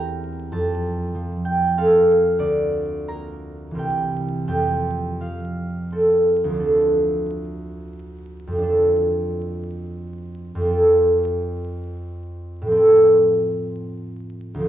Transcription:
Already playing: E2 G3 A#3 C4 A#4 E5 G5 A#5
0.52 F2 A5
1.15 F3
1.45 G5
1.77 C4 A4 F5
2.39 D2 D5
3.08 A#3 A#4 A#5
3.71 C2 E3
3.76 C4 A#4 G5
4.48 F2 G5
5.21 F3 F5
5.92 C4 A4
6.44 D2
6.49 F3
6.54 D4
6.60 A4
8.47 F2
8.52 F3
8.58 D4
8.63 A4
10.55 F2
10.61 F3
10.65 C4
10.70 A4
12.62 A2
12.67 F3
12.71 C4
12.77 A4
14.54 D2
14.59 F3
14.65 D4

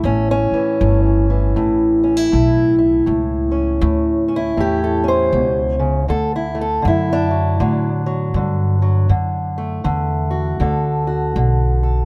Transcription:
Already playing: C#4
0.03 A1 A2 C#4
0.31 C#4
0.51 E3, muted upright bass stroke
0.81 G1 A2
1.30 E3
1.56 A1 A2
2.04 C#4
2.17 E4
2.32 B1 A2
2.78 E4
3.06 C#2 A2
3.52 C#4
3.81 D2 A2
4.28 C#4
4.36 E4
4.57 E2 A2 G4
4.84 A4
5.04 C#4
5.08 C5
5.33 C#2 B2
5.79 C#3
6.08 D2 D3 A4
6.36 E4
6.55 A3
6.61 A4
6.82 F#2 D3
6.88 E4
7.13 D4
7.30 F#3
7.60 A2 D3 F#3
8.06 F#3
8.34 G2 D3
8.82 F#3
9.09 F#2 D3
9.58 A3
9.84 E2 D3
10.31 F#4
10.60 D2 D3 A4
11.07 F#4
11.36 B1 D3
11.83 A4

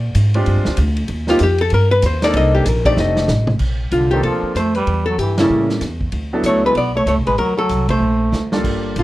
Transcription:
Already playing: A#2 D5
0.15 G#2, hi-hat pedal, ride
0.34 G#3 C4 D4 F4 G4, ride
0.46 G2, ride
0.57 F2
0.65 D2, snare
0.77 D2, hi-hat pedal, ride
0.97 ride
1.08 D#2, ride
1.27 A#3 C4 D#4 F4 G4, snare
1.39 F2, hi-hat pedal, ride
1.43 G4
1.58 A4, ride
1.70 G2 A#4, ride
1.91 B4
2.02 D#2 C5, hi-hat pedal, ride
2.22 A#3 C4 D4 D#4 A4 D5, snare, ride
2.34 C2 D#5, ride
2.55 G4
2.66 A#1 A#4, hi-hat pedal, ride
2.85 A3 C4 D4 D#4 G4 D5, kick, ride
2.97 F1 D#5, snare
3.16 snare
3.28 A1, snare, hi-hat pedal
3.47 mid tom
3.59 A#1, kick, crash
3.91 C2 D3 F4, hi-hat pedal, ride
4.11 D#3 A#3 C4 D4 F4 G4 A4, ride
4.23 D2 F3 A4, ride
4.43 muted upright bass stroke
4.55 F2 A3 C5, hi-hat pedal, ride
4.75 G3 B4, ride
4.87 E2, ride
5.06 F#3 A4
5.18 G2 E3 G4, hi-hat pedal, ride
5.38 C#3 G3 A#3 C#4 E4 A4, snare, ride
5.50 A2
5.69 snare
5.81 E2, snare, hi-hat pedal, ride
6.01 kick
6.12 D2, ride
6.33 F#3 B3 D4 E4 A4
6.43 C#2 A3 C#5, hi-hat pedal, ride
6.65 G#3 B4
6.75 B1 B3 D5, ride
6.96 A3 C#5
7.06 C#2 A3 C#5, hi-hat pedal, ride
7.17 B1
7.26 A1 G#3 B4, ride
7.38 D2 F#3 A#4, ride
7.57 F#3 A4
7.69 C2, hi-hat pedal, ride
7.89 A3 C5, kick, ride
8.00 A#1
8.32 D2, snare, hi-hat pedal
8.52 G3 A#3 D4 F4 A4, snare
8.64 G1, kick, crash
8.96 A1 D3 F4, hi-hat pedal, ride

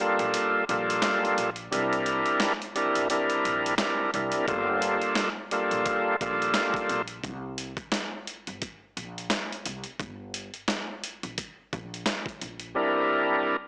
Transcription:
0.00 G2 G3 A#3 F4 A4
0.19 A#1, closed hi-hat
0.34 closed hi-hat
0.69 A#1 G2 G3 A#3 F4 A4, closed hi-hat
0.90 closed hi-hat
1.02 snare, closed hi-hat
1.25 closed hi-hat
1.38 A#1, closed hi-hat
1.56 closed hi-hat
1.71 C2 C3 G3 D4 E4 A#4, closed hi-hat
1.93 closed hi-hat
2.06 closed hi-hat
2.26 closed hi-hat
2.40 snare, closed hi-hat
2.62 closed hi-hat
2.75 C3 G3 D4 E4 A#4, closed hi-hat
2.95 G1, closed hi-hat
3.10 C3 G3 D4 E4 A#4, closed hi-hat
3.30 closed hi-hat
3.45 A#1, closed hi-hat
3.66 closed hi-hat
3.77 C3 G3 D4 E4 A#4, snare, closed hi-hat
4.14 C2 C3 G3 D4 E4 A#4, closed hi-hat
4.32 closed hi-hat
4.47 G1 G2 G3 A#3 F4 A4, kick, closed hi-hat
4.82 closed hi-hat
5.02 closed hi-hat
5.15 snare, closed hi-hat
5.51 G2 G3 A#3 F4 A4, closed hi-hat
5.71 A#1, closed hi-hat
5.86 kick, closed hi-hat
6.21 A#1 G2 G3 A#3 F4 A4, kick, closed hi-hat
6.42 closed hi-hat
6.54 snare, closed hi-hat
6.74 kick, closed hi-hat
6.89 A#1, closed hi-hat
7.08 closed hi-hat
7.24 C2, kick, closed hi-hat
7.58 closed hi-hat
7.77 kick, closed hi-hat
7.92 snare, closed hi-hat
8.27 closed hi-hat
8.47 G1, closed hi-hat
8.62 kick, closed hi-hat
8.97 A#1, closed hi-hat
9.18 closed hi-hat
9.30 snare, closed hi-hat
9.52 closed hi-hat
9.66 C2, closed hi-hat
9.84 closed hi-hat
10.00 G1, kick, closed hi-hat
10.34 closed hi-hat
10.54 closed hi-hat
10.68 snare, closed hi-hat
11.04 closed hi-hat
11.23 A#1, closed hi-hat
11.38 kick, closed hi-hat
11.73 A#1, kick, closed hi-hat
11.94 closed hi-hat
12.06 snare, closed hi-hat
12.26 kick, closed hi-hat
12.41 A#1, closed hi-hat
12.60 closed hi-hat
12.75 C3 G3 D4 E4 A#4

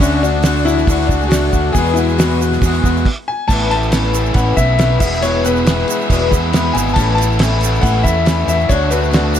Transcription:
Already playing: C#4 F#4
0.00 D2 D3 A3 D4 F#4 D5 A5, kick, open hi-hat, shaker
0.22 A3 D4 F#4, shaker
0.43 D3 A3 D4 F#4, snare, open hi-hat, shaker
0.58 shaker
0.65 A3 D4 E4 F#4, shaker
0.78 snare, shaker
0.87 D2 D3 A3 D4 F#4, kick, open hi-hat, shaker
1.07 C#2 D4 F#4, kick, shaker
1.12 A3 D4
1.21 G#4, shaker
1.28 D3 F#4, snare, open hi-hat
1.32 A3 D4 F#4, shaker
1.52 D2 A3 D4 F#4, kick, shaker
1.72 E2 G#4 E5 G#5, kick, open hi-hat, shaker
1.76 B2 E3 G#3 B3 F#4 G#4
1.87 shaker
1.94 E4 F#4, shaker
1.98 E3 G#3 B3
2.08 G#4, shaker
2.18 E2 B2 E3 G#3 B3 F#4, snare, open hi-hat, shaker
2.32 shaker
2.41 E3 G#3 B3 F#4, shaker
2.52 snare, shaker
2.62 E2 B2 E3 G#3 B3 G#4, kick, open hi-hat, shaker
2.67 F#4
2.74 shaker
2.84 E2 E3 G#3 B3 F#4, kick, shaker
2.97 shaker
3.05 kick, crash
3.28 G#5
3.48 A1 A2 E3 A3 A4 C#5 A5 B5, kick, crash, shaker
3.52 B3 C#4 E4
3.70 A3 C#4 E4 A5, crash
3.75 B3
3.83 shaker
3.92 E3 A3 B3 C#4, snare, crash, shaker
3.96 E4
4.03 snare
4.14 B3 C#4 E4, crash, shaker
4.26 shaker
4.34 A1 A2 E3 B3 C#4 E4 F#5, kick, crash, shaker
4.55 B1 C#4 E4 E5, kick, crash, shaker
4.59 A3 B3
4.78 A2 E3 A3 B3 C#4 E4, snare, crash, shaker
5.00 E1 E2 B2 G#3 B3 E4 G#4 E5, kick, crash, shaker
5.04 E3
5.14 shaker
5.21 E2 B2 E3 G#3 B3 E4 C#5, crash, shaker
5.43 E3 G#3 B3 E4 B4, crash, shaker
5.56 shaker
5.66 E3 G#3 B3 E4, snare, crash, shaker
5.79 snare
5.88 G#3 B3 E4, crash, shaker
5.92 E3
6.01 shaker
6.10 E1 E2 B2 E3 G#3 B3 E4, kick, crash, shaker
6.31 E2 E3 G#3 B3 E4, kick, crash, shaker
6.53 E2 B2 E3 G#3 B3 E4, snare, crash, shaker
6.73 G#1 G#3 B3 E4 G#5, crash
6.78 E3, shaker
6.89 shaker
6.94 A1 A2 E3 B3 A4 A5, kick, crash
6.98 A3 C#4 E4 C#5, shaker
7.15 E4 A5, crash
7.20 A3 B3 C#4, shaker
7.32 shaker
7.39 E3 A3 B3 C#4 E4, snare, crash, shaker
7.61 C#4 E4, crash, shaker
7.65 B3
7.75 shaker
7.81 A1 A2 E3 B3 C#4 E4 F#5, kick, crash
7.86 shaker
8.03 E2 B3 C#4 E4 E5, kick, crash, shaker
8.07 A3
8.25 A2 E3 A3 B3 C#4 E4, snare, crash, shaker
8.47 E2 A3 C#4 E4 E5, crash, shaker
8.52 B3
8.61 shaker
8.69 D2 D3 A3 D4 F#4 C#5 D5 A5, kick, crash, shaker
8.90 D4 F#4 B4, crash, shaker
8.94 A3
9.04 shaker
9.11 D3 A3 D4 F#4, snare, crash, shaker
9.33 D4 F#4, crash, shaker

